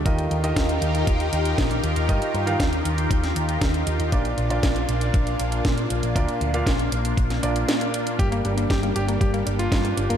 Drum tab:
HH |xxxxxxxxxxxxxxxx|xxxxxxxxxxxxxxxx|xxxxxxxxxxxxxxxx|xxxxxxxxxxxxxxxx|
SD |----o-------o---|----o----o--o---|----o-------o---|----o----o--o---|
BD |o---o---o---o---|o---o---o---o---|o---o---o---o---|o---o---o-------|

HH |xxxxxxxxxxxxxxxx|
SD |----o-------o---|
BD |o---o---o---o---|